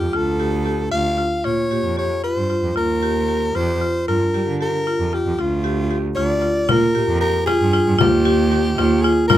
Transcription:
Already playing: G4
0.01 F2
0.13 D2 F4 A4
0.40 G4
0.65 G4
0.91 D2 F4 F5
1.18 F4
1.44 A#2 F4 C#5
1.71 A#2 G4
1.85 F2
1.97 G4 C#5
2.24 F4 C5
2.37 G2
2.50 F4
2.63 F2
2.76 D#2 F4 A#4
3.03 G4
3.29 G4
3.55 F2 F4 C5
3.81 F4
4.08 G2 F4 A#4
4.34 G3 G4
4.47 D3
4.61 G4 A#4
4.87 F4
5.00 F2
5.13 F4 G4
5.26 F2
5.39 D2 F4
5.64 G4
5.91 G4
6.15 D2 F4 D5
6.42 F4
6.69 A#2 F4 A#4, frame drum
6.95 A#2 G4
7.09 F2
7.21 G4 A#4
7.46 F4 G#4, frame drum
7.61 G2
7.74 F4
7.87 G2
7.99 D#2 F4 G4, frame drum
8.25 G4
8.52 G4
8.78 D#2 F4, frame drum
9.02 F4 G#4
9.28 G2 F4 A#4, frame drum

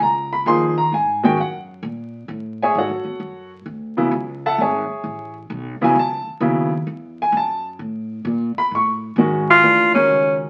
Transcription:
0.00 C#2 A#5
0.33 B5
0.46 D#2 F3 A#3 D#4 G#4 C6
0.78 A#5
0.92 G#2 G#5
1.23 D#3 G#3 C#4 F#4 G5
1.37 F#2 F#5
1.82 A#2
2.28 A2
2.62 G#4 C#5 E5 G#5
2.75 G#2 A4 C#5 F#5
2.79 F#4
2.89 F#2
3.04 E2
3.20 F#2
3.66 D2
3.97 C#3 F#3 B3 E4
4.11 C#2
4.46 A4 E5 F#5 A5
4.58 G#1 G#4 C#5 E5 G#5
4.90 muted upright bass stroke
5.04 A1
5.50 B1
5.81 C#3 F#3 B3 E4 G#5, muted upright bass stroke
5.95 C#2 A5
6.27 muted upright bass stroke
6.40 D#2 C#3 F#3 B3 E4
6.87 E2
7.22 G#5
7.32 F#2
7.37 A5
7.79 A2
8.25 A#2
8.57 B5, muted upright bass stroke
8.71 A2 C#6
9.16 G#2 D#3 G#3 C#4 F#4
9.50 F4
9.63 D#2 E3 A3 D4 G4 B4
9.95 D#3 G#3 C#4 F#4 A#4
10.09 C#2

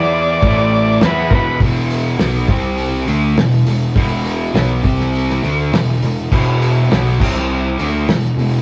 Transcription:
Already playing: E2 E3 B3 E4 D5
0.42 A1 A2 E3 A3, kick, crash
1.01 E2 E3 B3 E4, snare, crash
1.05 B4
1.30 E1 E2 B2 E3 A#4, kick
1.35 B4
1.60 E1 E2 B2 E3, kick, open hi-hat
1.90 open hi-hat
2.19 B1 B2 F#3 B3, snare, open hi-hat
2.48 C2 C3 G3 C4, kick, open hi-hat
2.78 open hi-hat
3.07 D2 D3 A3 D4, open hi-hat
3.36 E1 E2 B2, snare, open hi-hat
3.67 E1 E2 B2, open hi-hat
3.95 E1 E2 B2 E3, kick, open hi-hat
4.25 open hi-hat
4.53 B1 B2 F#3 B3, snare, open hi-hat
4.84 C2 C3 G3 C4, kick, open hi-hat
5.00 snare
5.15 open hi-hat
5.30 snare
5.43 D2 D3 A3 D4, open hi-hat
5.72 E1 E2 B2, snare, open hi-hat
6.02 E1 E2 B2, open hi-hat
6.31 E1 E2 B2 E3, kick, crash
6.62 open hi-hat
6.90 B1 B2 F#3 B3, snare, open hi-hat
7.20 C2 C3 G3 C4, kick, crash
7.37 snare
7.79 D2 D3 A3 D4, open hi-hat
8.09 E1 E2 B2, snare, open hi-hat
8.38 E1 E2 B2, open hi-hat

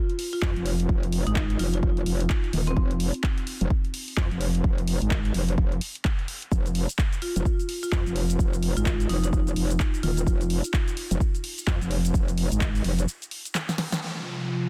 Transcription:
0.10 closed hi-hat
0.19 open hi-hat
0.33 F4, open hi-hat
0.42 F2, kick, clap
0.56 F1, closed hi-hat
0.66 open hi-hat
0.80 closed hi-hat
0.89 F1, kick
1.03 closed hi-hat
1.12 open hi-hat
1.27 G#1 D#4, closed hi-hat
1.36 kick, clap
1.50 closed hi-hat
1.59 F1 F4, open hi-hat
1.74 F4, closed hi-hat
1.83 F1, kick
1.97 closed hi-hat
2.06 F1, open hi-hat
2.20 closed hi-hat
2.30 kick, clap
2.44 closed hi-hat
2.53 D#1, open hi-hat
2.67 C4, closed hi-hat
2.77 F1, kick
2.91 closed hi-hat
3.00 open hi-hat
3.14 closed hi-hat
3.24 kick, clap
3.38 closed hi-hat
3.47 open hi-hat
3.61 F1, closed hi-hat
3.70 kick
3.85 closed hi-hat
3.94 open hi-hat
4.08 open hi-hat
4.17 F2, kick, clap
4.31 F1, closed hi-hat
4.41 open hi-hat
4.55 closed hi-hat
4.64 F1, kick
4.78 closed hi-hat
4.88 open hi-hat
5.02 G#1, closed hi-hat
5.11 kick, clap
5.25 closed hi-hat
5.34 F1, open hi-hat
5.49 closed hi-hat
5.58 F1, kick
5.72 closed hi-hat
5.81 open hi-hat
5.95 closed hi-hat
6.05 kick, clap
6.19 closed hi-hat
6.28 open hi-hat
6.42 closed hi-hat
6.52 F1, kick, cabasa
6.66 closed hi-hat, cabasa
6.75 open hi-hat
6.89 closed hi-hat, cabasa
6.99 kick, clap, cabasa
7.13 closed hi-hat, cabasa
7.22 F4, open hi-hat
7.36 F1 F4, closed hi-hat, cabasa
7.45 kick, cabasa
7.60 closed hi-hat, cabasa
7.69 open hi-hat
7.83 F4, open hi-hat, cabasa
7.92 F2, kick, clap, cabasa
8.06 F1, closed hi-hat, cabasa
8.16 open hi-hat
8.30 closed hi-hat, cabasa
8.39 F1, kick, cabasa
8.53 closed hi-hat, cabasa
8.63 open hi-hat
8.77 G#1 F4, closed hi-hat, cabasa
8.86 F4, kick, clap, cabasa
9.00 closed hi-hat, cabasa
9.09 F1 D#4, open hi-hat
9.24 D#4, closed hi-hat, cabasa
9.33 F1, kick, cabasa
9.47 closed hi-hat, cabasa
9.56 F1, open hi-hat
9.71 closed hi-hat, cabasa
9.80 kick, clap, cabasa
9.94 closed hi-hat, cabasa
10.03 D#1 F4, open hi-hat
10.17 closed hi-hat, cabasa
10.27 F1, kick, cabasa
10.41 closed hi-hat, cabasa
10.50 open hi-hat
10.64 closed hi-hat, cabasa
10.74 kick, clap, cabasa
10.88 closed hi-hat, cabasa
10.97 open hi-hat
11.11 F1, closed hi-hat, cabasa
11.20 kick, cabasa
11.35 closed hi-hat, cabasa
11.44 open hi-hat
11.58 open hi-hat, cabasa
11.67 F2, kick, clap, cabasa
11.81 F1, closed hi-hat, cabasa
11.91 open hi-hat
12.05 closed hi-hat, cabasa
12.14 F1, kick, cabasa
12.28 closed hi-hat, cabasa
12.38 open hi-hat
12.52 G#1, closed hi-hat, cabasa
12.61 kick, clap, cabasa
12.75 open hi-hat, cabasa
12.84 F1, open hi-hat
12.99 closed hi-hat, cabasa
13.08 cabasa
13.22 closed hi-hat, cabasa
13.31 open hi-hat
13.45 closed hi-hat, cabasa
13.55 snare, clap, cabasa
13.69 snare, closed hi-hat, cabasa
13.78 snare, open hi-hat
13.92 snare, closed hi-hat, cabasa
14.02 C3 F3 F4, crash, downlifter

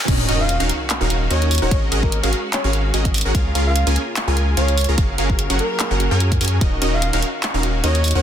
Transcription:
0.08 D#1 D#3 C#4 D#4 F#4 A#4 D#5, kick, closed hi-hat, crash, sub drop
0.28 D#1 C#4 D#4 F#4 A#4 D#5, closed hi-hat
0.40 F5
0.49 closed hi-hat
0.60 D#1 C#4 D#4 F#4 A#4 F5, closed hi-hat
0.69 closed hi-hat
0.90 clap, closed hi-hat
1.01 D#1 C#4 D#4 F#4 A#4 F5
1.10 closed hi-hat
1.30 D#2 C#4 D#4 F#4 A#4 C#5 D#5, closed hi-hat
1.42 closed hi-hat
1.51 closed hi-hat, open hi-hat
1.58 closed hi-hat
1.62 D#1 C#4 D#4 F#4 A#4 C#5 F#5
1.71 G#1 G#3 C#4 F#4 G#4 A#4 D#5, kick, closed hi-hat
1.92 G#1 C#4 F#4 G#4 A#4 D#5, closed hi-hat
2.03 A#4, kick
2.12 closed hi-hat
2.23 G#1 C#4 F#4 G#4 A#4 F5, closed hi-hat
2.33 closed hi-hat
2.53 C#5, clap, closed hi-hat
2.64 G#1 C#4 F#4 G#4 A#4 C#5 F5
2.73 closed hi-hat
2.94 G#1 C#4 F#4 G#4 A#4 D#5, closed hi-hat
3.05 kick, closed hi-hat
3.14 closed hi-hat, open hi-hat
3.21 closed hi-hat
3.25 G#1 C#4 F#4 G#4 A#4 F#5
3.35 C#2 C#3 A#3 C#4 F4 A#4 F5, kick, closed hi-hat
3.55 C#2 C#4 F4 G#4 A#4 F5, closed hi-hat
3.66 F5
3.76 closed hi-hat
3.87 C#2 C#4 F4 G#4 A#4 G#5, closed hi-hat
3.96 closed hi-hat
4.16 clap, closed hi-hat
4.28 C#2 C#4 F4 G#4 A#4 G#5
4.37 closed hi-hat
4.57 C#2 C#4 F4 G#4 A#4 C#5 F5, closed hi-hat
4.68 closed hi-hat
4.78 closed hi-hat, open hi-hat
4.84 closed hi-hat
4.89 C#2 C#4 F4 G#4 A#4 A#5
4.98 F#1 F#3 C#4 F4 F#4 G#4 A#4 F5, kick, closed hi-hat
5.18 F#1 C#4 F#4 G#4 A#4 F5, closed hi-hat
5.30 kick
5.39 closed hi-hat
5.50 F#1 C#4 F#4 G#4 A#4 F#5, closed hi-hat
5.59 A#4, closed hi-hat
5.71 A#4
5.80 clap, closed hi-hat
5.91 F#1 C#4 F#4 G#4 A#4 F#5
6.00 closed hi-hat
6.11 F#2 C#4 F#4 G#4 A#4 G#5
6.20 closed hi-hat
6.32 kick, closed hi-hat
6.41 F#2 C#4 F#4 G#4 A#4 G#5, closed hi-hat, open hi-hat
6.48 closed hi-hat
6.61 D#1 D#3 C#4 D#4 F#4 A#4 D#5, kick, closed hi-hat
6.82 D#1 C#4 D#4 F#4 A#4 D#5, closed hi-hat
6.93 F5
7.02 closed hi-hat
7.13 D#1 C#4 D#4 F#4 A#4 F5, closed hi-hat
7.22 closed hi-hat
7.43 clap, closed hi-hat
7.54 D#1 C#4 D#4 F#4 A#4 F5
7.63 closed hi-hat
7.84 D#2 C#4 D#4 F#4 A#4 C#5 D#5, closed hi-hat
7.95 closed hi-hat
8.04 closed hi-hat, open hi-hat
8.11 closed hi-hat
8.15 D#2 C#4 D#4 F#4 A#4 C#5 F#5

